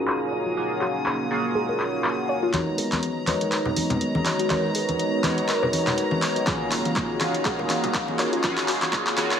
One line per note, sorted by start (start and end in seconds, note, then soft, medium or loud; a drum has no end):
0.00 0.54 A#3 medium
0.00 0.54 C#4 medium
0.00 2.50 D#4 medium
0.00 0.54 F4 medium
0.00 0.54 F#4 medium
0.00 0.54 G#4 loud
0.00 2.50 G#4 medium
0.00 2.50 C#5 medium
0.00 2.50 F5 medium
0.00 2.50 A#5 medium
0.00 2.55 D#6 medium
0.07 clap loud
0.32 0.39 C#5 medium
0.46 0.54 F4 medium
0.57 1.28 A#3 medium
0.57 1.28 C#4 medium
0.57 0.67 F4 medium
0.57 1.28 F4 medium
0.57 1.28 F#4 medium
0.57 1.28 G#4 medium
0.81 0.85 F#4 medium
0.81 clap medium
1.06 clap loud
1.31 2.51 A#3 loud
1.31 2.51 C#4 medium
1.31 2.51 F4 medium
1.31 2.51 F#4 medium
1.31 2.51 G#4 loud
1.55 1.59 G#4 medium
1.69 1.72 A#4 medium
1.80 clap medium
2.04 clap loud
2.29 2.36 C#5 medium
2.43 2.51 F4 medium
2.53 6.43 G#3 medium
2.53 6.43 B3 medium
2.53 3.25 D#4 medium
2.53 3.25 F#4 medium
2.53 3.25 A#4 medium
2.53 3.25 B4 medium
2.53 9.40 C#5 medium
2.53 3.25 C#5 medium
2.53 6.43 D#5 medium
2.53 9.40 A#5 medium
2.53 clap soft
2.53 closed hi-hat medium
2.53 high conga medium
2.78 2.82 G#4 medium
2.78 open hi-hat loud
2.92 clap soft
2.92 closed hi-hat medium
2.92 high conga medium
3.03 closed hi-hat medium
3.27 4.48 D#4 medium
3.27 4.48 F#4 medium
3.27 4.48 A#4 medium
3.27 4.48 B4 medium
3.27 4.48 C#5 loud
3.27 clap medium
3.27 open hi-hat loud
3.27 high conga medium
3.41 closed hi-hat medium
3.52 3.56 A#4 medium
3.52 clap medium
3.52 closed hi-hat medium
3.65 3.69 B4 medium
3.65 low conga medium
3.76 open hi-hat loud
3.76 high conga medium
3.90 closed hi-hat medium
3.90 low conga medium
4.01 closed hi-hat medium
4.15 high conga medium
4.26 4.32 C#5 medium
4.26 clap medium
4.26 open hi-hat loud
4.39 4.47 F#4 medium
4.39 closed hi-hat medium
4.50 5.21 D#4 medium
4.50 5.21 F#4 medium
4.50 4.60 F#4 medium
4.50 5.21 A#4 medium
4.50 5.21 B4 medium
4.50 5.21 C#5 medium
4.50 clap medium
4.50 closed hi-hat medium
4.50 high conga medium
4.75 4.79 G#4 medium
4.75 open hi-hat loud
4.89 closed hi-hat medium
4.89 high conga medium
4.99 closed hi-hat medium
5.23 6.44 D#4 medium
5.23 6.44 F#4 medium
5.23 6.44 A#4 medium
5.23 6.44 B4 medium
5.23 6.44 C#5 loud
5.23 clap medium
5.23 open hi-hat loud
5.23 high conga loud
5.38 closed hi-hat medium
5.49 5.53 A#4 medium
5.49 clap medium
5.49 closed hi-hat medium
5.62 5.66 B4 medium
5.62 low conga medium
5.73 open hi-hat loud
5.73 high conga medium
5.87 clap medium
5.87 closed hi-hat medium
5.87 low conga medium
5.98 closed hi-hat medium
6.11 high conga medium
6.22 6.29 C#5 medium
6.22 clap medium
6.22 open hi-hat loud
6.36 6.44 F#4 medium
6.36 closed hi-hat medium
6.46 7.18 A#3 medium
6.46 7.18 C#4 medium
6.46 9.40 D#4 medium
6.46 6.57 F4 medium
6.46 7.18 F4 medium
6.46 7.18 F#4 medium
6.46 9.40 G#4 medium
6.46 7.18 G#4 medium
6.46 9.40 F5 medium
6.46 kick loud
6.46 clap medium
6.46 closed hi-hat medium
6.46 high conga loud
6.72 6.76 F#4 medium
6.72 clap medium
6.72 open hi-hat loud
6.85 closed hi-hat medium
6.85 high conga medium
6.96 kick loud
6.96 clap medium
6.96 closed hi-hat medium
7.21 8.41 A#3 loud
7.21 8.41 C#4 medium
7.21 8.41 F4 medium
7.21 8.41 F#4 medium
7.21 8.41 G#4 loud
7.21 clap medium
7.21 open hi-hat loud
7.21 high conga loud
7.34 closed hi-hat medium
7.45 7.49 G#4 medium
7.45 kick loud
7.45 clap medium
7.45 closed hi-hat medium
7.59 7.62 A#4 medium
7.59 low conga medium
7.69 clap medium
7.69 open hi-hat loud
7.69 high conga medium
7.84 closed hi-hat medium
7.84 low conga loud
7.94 kick loud
7.94 clap medium
7.94 closed hi-hat medium
8.08 high conga medium
8.19 8.26 C#5 medium
8.19 clap medium
8.19 open hi-hat loud
8.33 8.41 F4 medium
8.33 closed hi-hat medium
8.43 9.15 A#3 medium
8.43 9.15 C#4 medium
8.43 9.15 F4 medium
8.43 8.54 F4 medium
8.43 9.15 F#4 medium
8.43 9.15 G#4 loud
8.43 kick loud
8.43 clap medium
8.43 closed hi-hat medium
8.43 high conga medium
8.58 clap medium
8.58 open hi-hat medium
8.68 8.72 F#4 medium
8.68 clap medium
8.68 open hi-hat loud
8.82 clap medium
8.82 closed hi-hat medium
8.82 high conga medium
8.93 kick loud
8.93 clap medium
8.93 closed hi-hat medium
9.07 clap medium
9.17 9.40 A#3 loud
9.17 9.40 C#4 medium
9.17 9.40 F4 medium
9.17 9.40 F#4 medium
9.17 9.40 G#4 loud
9.17 clap loud
9.17 open hi-hat loud
9.17 high conga loud
9.31 clap medium
9.31 closed hi-hat medium